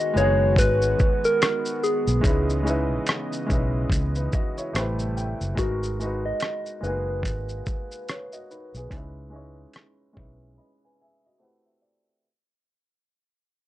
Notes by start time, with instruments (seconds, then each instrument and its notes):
Already playing: analog synth pad D#3 G#3 B3 F#4, upright piano G#3 B3 D#4 F#4 G#4 A#4, soft synth lead D#5
0.14 fingered electric bass F#1, upright piano G#3 B3 D#4, soft synth lead C#5, shaker
0.18 upright piano F#4 G#4
0.56 fingered electric bass G#1, soft synth lead B4, kick, closed hi-hat, shaker
0.82 shaker
0.99 kick, shaker
1.24 soft synth lead A#4, shaker
1.42 cross-stick, closed hi-hat, shaker
1.65 shaker
1.84 soft synth lead G#4, shaker
2.07 fingered electric bass B1, shaker
2.21 analog synth pad C#3 E3 D#5, upright piano G#3 C#4 D#4, kick, closed hi-hat, shaker
2.26 upright piano E4 B4
2.50 shaker
2.63 upright piano G#3 C#4 D#4, shaker
2.68 upright piano E4 B4
3.07 cross-stick, closed hi-hat, shaker
3.33 shaker
3.46 fingered electric bass B1, upright piano G#3 C#4 D#4, kick, shaker
3.51 upright piano E4 B4
3.90 fingered electric bass C#2, kick, closed hi-hat, shaker
4.15 upright piano D#4 B4, shaker
4.33 upright piano F#4 D#5, kick, shaker
4.58 upright piano E4 C#5, shaker
4.73 fingered electric bass A1, analog synth pad C3 G3 A3 E4, upright piano A3 C4 E4 C5, cross-stick, closed hi-hat, shaker
4.78 upright piano G4 B4
4.99 shaker
5.17 upright piano G5, shaker
5.41 fingered electric bass F#1, shaker
5.55 fingered electric bass G#1, upright piano G#3 B3 D#4, soft synth lead F#4, kick, closed hi-hat, shaker
5.59 upright piano F#4 A#4
5.83 shaker
5.99 upright piano G#3 B3 D#4, shaker
6.04 upright piano F#4 B4
6.26 soft synth lead D#5
6.40 cross-stick, closed hi-hat, shaker
6.66 shaker
6.81 fingered electric bass F#1, upright piano G#3 A#3 D#4, soft synth lead B4, shaker
6.85 upright piano B3 F#4 G#4
7.23 fingered electric bass G#1, kick, closed hi-hat, shaker
7.49 shaker
7.66 kick, shaker
7.91 shaker
8.09 upright piano C#5, cross-stick, closed hi-hat, shaker
8.33 upright piano F#4 D#5, shaker
8.51 upright piano D#4 B4, shaker
8.75 fingered electric bass B1, upright piano B3 G#4, shaker
8.90 fingered electric bass C#2, upright piano G#3 C#4 D#4, kick, closed hi-hat
8.94 upright piano E4 B4
9.30 upright piano G#3 C#4 D#4
9.34 upright piano E4 C#5
9.73 cross-stick, closed hi-hat
10.13 fingered electric bass B1, upright piano G#3 C#4 D#4, kick
10.18 upright piano E4 B4
10.58 upright piano D#5 B5
10.85 upright piano B4 G#5
11.01 upright piano G#4 E5 G#5
11.26 upright piano F#4 D#5
11.38 upright piano A3 C4 E4 F#5
11.43 upright piano G4 B4
11.65 upright piano E5
11.82 upright piano D5